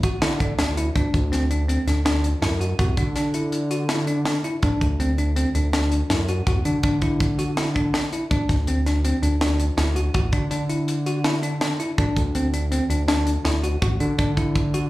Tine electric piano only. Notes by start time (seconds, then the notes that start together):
0.04 F#4
0.22 E4
0.40 D4
0.59 D4
0.77 E4
0.96 D4
1.32 C4
1.51 D4
1.68 C4
1.87 D4
2.05 D4
2.42 E4
2.61 F#4
2.79 F#4
2.98 D4
3.16 D4
3.34 E4
3.71 F#4
3.89 E4
4.08 D4
4.26 D4
4.44 E4
4.63 D4
5.00 C4
5.18 D4
5.36 C4
5.55 D4
5.74 D4
6.10 E4
6.29 F#4
6.47 F#4
6.65 D4
6.84 D4
7.02 E4
7.39 F#4
7.57 E4
7.75 D4
7.94 D4
8.13 E4
8.31 D4
8.68 C4
8.87 D4
9.05 C4
9.23 D4
9.41 D4
9.78 E4
9.96 F#4
10.14 F#4
10.33 D4
10.51 D4
10.69 E4
11.07 F#4
11.25 E4
11.43 D4
11.61 D4
11.80 E4
11.98 D4
12.35 C4
12.54 D4
12.72 C4
12.90 D4
13.08 D4
13.45 E4
13.63 F#4
13.82 F#4
14.00 D4
14.18 D4
14.37 E4
14.74 F#4